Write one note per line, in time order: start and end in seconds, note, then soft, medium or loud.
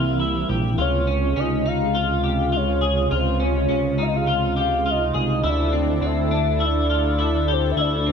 0.00 0.45 C2 loud
0.00 0.76 C3 medium
0.00 0.77 C3 medium
0.00 0.78 E3 medium
0.00 0.76 G3 medium
0.00 0.79 G3 medium
0.00 0.76 A#3 medium
0.00 1.31 C4 medium
0.00 0.75 E4 medium
0.00 0.80 E4 medium
0.00 0.19 F4 medium
0.00 0.81 A#4 medium
0.00 0.16 E5 medium
0.20 0.49 E4 medium
0.49 0.77 A#1 loud
0.49 0.78 G4 medium
0.78 1.33 C#2 loud
0.78 5.40 C3 medium
0.78 5.40 C#3 medium
0.78 5.40 G#3 medium
0.78 5.40 F4 medium
0.78 1.07 F4 medium
0.78 1.41 C#5 loud
1.07 1.35 C#4 medium
1.36 3.07 C#2 loud
1.36 1.65 C#4 medium
1.36 1.69 D#5 loud
1.66 1.95 D#4 medium
1.66 2.58 F5 loud
1.95 2.23 F4 medium
2.24 2.52 G4 medium
2.52 2.81 F4 medium
2.56 3.16 C#5 loud
2.81 3.11 G#4 medium
3.11 3.67 C#2 loud
3.11 3.40 F4 medium
3.11 3.46 C5 medium
3.40 3.67 C#4 medium
3.44 4.04 C#5 loud
3.69 5.11 C#2 loud
3.69 3.98 C#4 medium
3.98 4.27 D#4 medium
4.02 4.08 F5 loud
4.07 4.17 D#5 medium
4.16 4.58 F5 loud
4.27 4.56 F4 loud
4.56 4.85 G4 medium
4.56 4.92 F5 loud
4.86 5.14 F4 medium
4.90 5.50 D#5 loud
5.14 5.42 C2 loud
5.14 5.43 G#4 medium
5.44 5.99 D2 loud
5.44 8.12 D3 medium
5.44 8.12 D4 medium
5.44 5.73 E4 loud
5.44 8.12 E4 medium
5.44 8.12 A4 medium
5.49 6.08 D5 medium
5.73 6.01 C4 medium
6.01 7.73 D2 loud
6.01 6.31 C4 medium
6.06 6.67 E5 loud
6.31 6.60 D4 medium
6.60 6.89 E4 medium
6.65 7.54 D5 loud
6.90 7.18 F4 medium
7.19 7.48 E4 medium
7.48 7.77 G4 medium
7.53 7.71 C5 medium
7.72 7.82 E5 medium
7.76 8.12 D2 loud
7.76 8.06 E4 medium
7.76 8.12 D5 loud
8.06 8.12 C4 medium